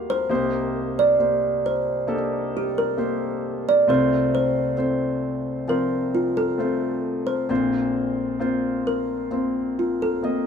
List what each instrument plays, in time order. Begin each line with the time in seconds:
Already playing: grand piano D#2 D#3 A#3 F4 F#4 G4 C5 F5
0.10 kalimba C5
0.29 grand piano C2 C3 A#3 D#4 G4 C5
0.99 kalimba D5
1.19 grand piano A#3 D#4 G4 C5
1.66 kalimba C5
2.07 grand piano A#3 D4 G4 A4
2.14 grand piano D#4
2.57 kalimba G4
2.78 kalimba A#4
2.97 grand piano A#3 D#4 G4 C5
3.69 kalimba D5
3.88 grand piano C2 C3 A3 C4 F4 C5, kalimba C5
4.35 kalimba C5
4.77 grand piano A3 C4 F4 C5
5.68 grand piano F3 C4 F4 C5, kalimba A#4
6.15 kalimba F4
6.37 kalimba A4
6.58 grand piano A3 C4 F4 C5
7.27 kalimba C5
7.49 grand piano A#1 A#2 A#3 C4 F4 C5
8.40 grand piano A#3 C4 F4 C5
8.87 kalimba A#4
9.31 grand piano A#3 C4 F4 C5
9.79 kalimba F4
10.02 kalimba A4
10.23 grand piano A#3 C4 F4 D#5